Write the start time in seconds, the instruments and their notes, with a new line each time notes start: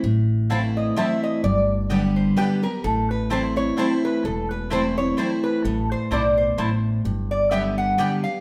0.04 upright bass A1, steel-string acoustic guitar A2
0.50 steel-string acoustic guitar E3 A3 C4 E4, mandolin C4 E4 C5 A5, resonator guitar played with a steel bar F5
0.77 resonator guitar played with a steel bar D#5
0.96 steel-string acoustic guitar E3 A3 C4 E4, mandolin C4 E4 C5 A5, resonator guitar played with a steel bar E5
1.23 resonator guitar played with a steel bar D#5
1.44 upright bass G1, steel-string acoustic guitar G2, resonator guitar played with a steel bar D5
1.90 steel-string acoustic guitar D3 G3 B3 G4, mandolin B3 G4 D5 G5
2.16 resonator guitar played with a steel bar C5
2.36 steel-string acoustic guitar D3 G3 B3 G4, mandolin B3 G4 D5 G5, resonator guitar played with a steel bar B4
2.63 steel-string acoustic guitar B3 G4, resonator guitar played with a steel bar A#4
2.84 upright bass A1, steel-string acoustic guitar A2, resonator guitar played with a steel bar A4
3.11 resonator guitar played with a steel bar B4
3.30 steel-string acoustic guitar E3 A3 C4 E4, mandolin C4 E4 C5 A5, resonator guitar played with a steel bar C5
3.56 steel-string acoustic guitar C4 E4, resonator guitar played with a steel bar C#5
3.77 steel-string acoustic guitar E3 A3 C4 E4, mandolin C4 E4 C5 A5, resonator guitar played with a steel bar C5
4.05 resonator guitar played with a steel bar B4
4.24 upright bass E1, steel-string acoustic guitar E2, resonator guitar played with a steel bar A4
4.51 resonator guitar played with a steel bar B4
4.70 steel-string acoustic guitar E3 A3 C4 E4, mandolin C4 E4 C5 A5, resonator guitar played with a steel bar C5
4.97 steel-string acoustic guitar C4 E4, resonator guitar played with a steel bar C#5
5.17 steel-string acoustic guitar E3 A3 C4 E4, mandolin C4 E4 C5 A5, resonator guitar played with a steel bar C5
5.44 resonator guitar played with a steel bar B4
5.64 upright bass A1, steel-string acoustic guitar A2, resonator guitar played with a steel bar A4
5.92 resonator guitar played with a steel bar C5
6.11 upright bass B1, steel-string acoustic guitar B2, mandolin C4 E4 C5 A5, resonator guitar played with a steel bar D5
6.37 resonator guitar played with a steel bar C5
6.58 upright bass A1, steel-string acoustic guitar A2, mandolin C4 E4 C5 A5
7.05 upright bass G1, steel-string acoustic guitar G2
7.31 resonator guitar played with a steel bar D5
7.51 steel-string acoustic guitar D3 G3 B3 G4, mandolin B3 G4 D5 G5, resonator guitar played with a steel bar E5
7.78 resonator guitar played with a steel bar F#5
7.98 steel-string acoustic guitar D3 G3 B3 G4, mandolin B3 G4 D5 G5, resonator guitar played with a steel bar G5
8.24 steel-string acoustic guitar B3 G4, resonator guitar played with a steel bar F5